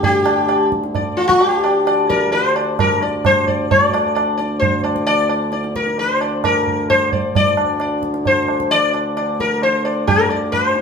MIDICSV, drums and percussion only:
0, 0, Header, 1, 2, 480
1, 0, Start_track
1, 0, Tempo, 458716
1, 29, Time_signature, 4, 2, 24, 8
1, 5309, Tempo, 453858
1, 11381, End_track
2, 0, Start_track
2, 0, Title_t, "Tabla"
2, 33, Note_on_c, 9, 63, 101
2, 33, Note_on_c, 9, 64, 96
2, 137, Note_off_c, 9, 63, 0
2, 137, Note_off_c, 9, 64, 0
2, 268, Note_on_c, 9, 60, 81
2, 372, Note_off_c, 9, 60, 0
2, 512, Note_on_c, 9, 60, 76
2, 617, Note_off_c, 9, 60, 0
2, 754, Note_on_c, 9, 37, 53
2, 858, Note_off_c, 9, 37, 0
2, 874, Note_on_c, 9, 62, 61
2, 979, Note_off_c, 9, 62, 0
2, 990, Note_on_c, 9, 63, 79
2, 990, Note_on_c, 9, 64, 75
2, 1095, Note_off_c, 9, 63, 0
2, 1095, Note_off_c, 9, 64, 0
2, 1234, Note_on_c, 9, 60, 51
2, 1339, Note_off_c, 9, 60, 0
2, 1353, Note_on_c, 9, 37, 57
2, 1457, Note_off_c, 9, 37, 0
2, 1471, Note_on_c, 9, 60, 66
2, 1575, Note_off_c, 9, 60, 0
2, 1717, Note_on_c, 9, 60, 70
2, 1822, Note_off_c, 9, 60, 0
2, 1957, Note_on_c, 9, 60, 79
2, 2062, Note_off_c, 9, 60, 0
2, 2199, Note_on_c, 9, 37, 62
2, 2304, Note_off_c, 9, 37, 0
2, 2441, Note_on_c, 9, 63, 72
2, 2545, Note_off_c, 9, 63, 0
2, 2678, Note_on_c, 9, 60, 53
2, 2783, Note_off_c, 9, 60, 0
2, 2920, Note_on_c, 9, 60, 76
2, 2920, Note_on_c, 9, 64, 66
2, 3025, Note_off_c, 9, 60, 0
2, 3025, Note_off_c, 9, 64, 0
2, 3161, Note_on_c, 9, 62, 50
2, 3266, Note_off_c, 9, 62, 0
2, 3398, Note_on_c, 9, 60, 69
2, 3398, Note_on_c, 9, 64, 70
2, 3503, Note_off_c, 9, 60, 0
2, 3503, Note_off_c, 9, 64, 0
2, 3641, Note_on_c, 9, 64, 57
2, 3745, Note_off_c, 9, 64, 0
2, 3882, Note_on_c, 9, 63, 97
2, 3882, Note_on_c, 9, 64, 76
2, 3987, Note_off_c, 9, 63, 0
2, 3987, Note_off_c, 9, 64, 0
2, 4125, Note_on_c, 9, 60, 74
2, 4230, Note_off_c, 9, 60, 0
2, 4358, Note_on_c, 9, 60, 72
2, 4463, Note_off_c, 9, 60, 0
2, 4596, Note_on_c, 9, 62, 56
2, 4700, Note_off_c, 9, 62, 0
2, 4834, Note_on_c, 9, 63, 80
2, 4834, Note_on_c, 9, 64, 66
2, 4939, Note_off_c, 9, 63, 0
2, 4939, Note_off_c, 9, 64, 0
2, 5069, Note_on_c, 9, 60, 58
2, 5174, Note_off_c, 9, 60, 0
2, 5188, Note_on_c, 9, 37, 54
2, 5292, Note_off_c, 9, 37, 0
2, 5307, Note_on_c, 9, 60, 63
2, 5413, Note_off_c, 9, 60, 0
2, 5541, Note_on_c, 9, 60, 61
2, 5647, Note_off_c, 9, 60, 0
2, 5779, Note_on_c, 9, 62, 69
2, 5885, Note_off_c, 9, 62, 0
2, 5910, Note_on_c, 9, 62, 57
2, 6016, Note_off_c, 9, 62, 0
2, 6031, Note_on_c, 9, 37, 62
2, 6136, Note_off_c, 9, 37, 0
2, 6149, Note_on_c, 9, 62, 53
2, 6255, Note_off_c, 9, 62, 0
2, 6268, Note_on_c, 9, 63, 66
2, 6374, Note_off_c, 9, 63, 0
2, 6511, Note_on_c, 9, 60, 56
2, 6617, Note_off_c, 9, 60, 0
2, 6753, Note_on_c, 9, 60, 77
2, 6753, Note_on_c, 9, 64, 67
2, 6859, Note_off_c, 9, 60, 0
2, 6859, Note_off_c, 9, 64, 0
2, 6998, Note_on_c, 9, 64, 54
2, 7104, Note_off_c, 9, 64, 0
2, 7241, Note_on_c, 9, 60, 69
2, 7241, Note_on_c, 9, 64, 60
2, 7346, Note_off_c, 9, 60, 0
2, 7346, Note_off_c, 9, 64, 0
2, 7477, Note_on_c, 9, 64, 54
2, 7583, Note_off_c, 9, 64, 0
2, 7719, Note_on_c, 9, 63, 90
2, 7719, Note_on_c, 9, 64, 81
2, 7825, Note_off_c, 9, 63, 0
2, 7825, Note_off_c, 9, 64, 0
2, 7952, Note_on_c, 9, 60, 77
2, 8058, Note_off_c, 9, 60, 0
2, 8191, Note_on_c, 9, 60, 69
2, 8297, Note_off_c, 9, 60, 0
2, 8432, Note_on_c, 9, 37, 55
2, 8537, Note_off_c, 9, 37, 0
2, 8552, Note_on_c, 9, 62, 63
2, 8658, Note_off_c, 9, 62, 0
2, 8673, Note_on_c, 9, 63, 74
2, 8673, Note_on_c, 9, 64, 70
2, 8779, Note_off_c, 9, 63, 0
2, 8779, Note_off_c, 9, 64, 0
2, 8916, Note_on_c, 9, 60, 59
2, 9021, Note_off_c, 9, 60, 0
2, 9038, Note_on_c, 9, 37, 56
2, 9144, Note_off_c, 9, 37, 0
2, 9161, Note_on_c, 9, 60, 70
2, 9267, Note_off_c, 9, 60, 0
2, 9401, Note_on_c, 9, 60, 60
2, 9507, Note_off_c, 9, 60, 0
2, 9642, Note_on_c, 9, 60, 70
2, 9748, Note_off_c, 9, 60, 0
2, 9884, Note_on_c, 9, 37, 61
2, 9990, Note_off_c, 9, 37, 0
2, 10122, Note_on_c, 9, 63, 65
2, 10228, Note_off_c, 9, 63, 0
2, 10362, Note_on_c, 9, 60, 54
2, 10467, Note_off_c, 9, 60, 0
2, 10603, Note_on_c, 9, 60, 75
2, 10603, Note_on_c, 9, 64, 73
2, 10709, Note_off_c, 9, 60, 0
2, 10709, Note_off_c, 9, 64, 0
2, 10838, Note_on_c, 9, 62, 51
2, 10944, Note_off_c, 9, 62, 0
2, 11077, Note_on_c, 9, 60, 63
2, 11077, Note_on_c, 9, 64, 56
2, 11182, Note_off_c, 9, 60, 0
2, 11182, Note_off_c, 9, 64, 0
2, 11313, Note_on_c, 9, 62, 58
2, 11381, Note_off_c, 9, 62, 0
2, 11381, End_track
0, 0, End_of_file